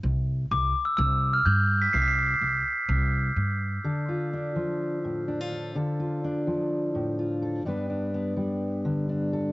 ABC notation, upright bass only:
X:1
M:4/4
L:1/8
Q:1/4=126
K:Ddor
V:1 name="Upright bass" clef=bass
C,,2 C,, z C,,2 G,,2 | C,,2 C,, z C,,2 G,,2 | z8 | z8 |
z8 |]